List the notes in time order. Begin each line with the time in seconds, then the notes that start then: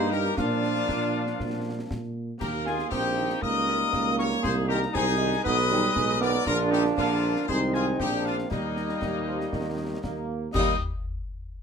Already playing: G2 G3 A#3 D#4 C5
0.11 D#4 G4 A#4 A#5, snare
0.25 snare
0.36 A#2 F3 A#3 D4 F4 F5, concert bass drum, snare, crash
0.63 snare
0.76 snare
0.89 A#2, concert bass drum, snare
1.27 snare
1.40 A#2, concert bass drum, snare
1.91 A#2, concert bass drum, snare
2.40 D#2 A#3 D#4 G4 A#4 A#5, concert bass drum, snare, crash
2.65 D#3 A#3 D#4 F4 G#4 G#5, snare
2.79 snare
2.90 A#1 C4 D#4 G4 G5, concert bass drum, snare
3.16 D#3 A#3 D#4
3.30 snare
3.42 C#2 G3 A#3 A#4 D#5 D#6, concert bass drum
3.67 G3 A#3 D#4, snare
3.93 C#2 A#3, concert bass drum, snare
4.18 G3 A#3 D#4 A#4 C#5 C#6, snare
4.32 snare
4.42 C2 G#3 D#4 G#4 C5 C6, concert bass drum, snare, crash
4.68 D#3 G#3 D#4 G4 A#4 A#5, snare
4.82 snare
4.93 C2 C4 D#4 G#4 G#5, concert bass drum, snare
5.18 D#3 G#3 D#4
5.33 snare
5.44 B1 B3 B4 D#5 D#6, concert bass drum
5.71 D#3 G3 G#3 D#4, snare
5.96 B1 G#3, concert bass drum, snare
6.20 D#3 G#3 B3 D#4 A#4 D5 D6, snare
6.34 snare
6.46 A#1 D3 F3 A#3 D4 F4 A#4 A#5, concert bass drum, snare, crash
6.71 D#4 G4 G5, snare
6.85 snare
6.97 A#1 D3 F3 A#3 D4 F4 F5, concert bass drum, snare
7.36 snare
7.48 C2 D#3 G#3 C4 D#4 G#4 C5 C6, concert bass drum
7.74 F4 G#4 G#5, snare
7.98 A#1 F3 A#3 D4 D#4 G4 G5, concert bass drum, snare
8.25 D4 F4 F5, snare
8.38 snare
8.49 D#2 G3 A#3 D#4 D#5, concert bass drum, snare, crash
8.76 snare
8.89 snare
9.01 D#2 G3, concert bass drum, snare
9.26 F3
9.40 snare
9.52 D#2 D#3, concert bass drum, snare
10.02 D#2 A#3, concert bass drum, snare
10.53 D#2 G3 A#3 D#4 D#5 D#6, concert bass drum, snare, crash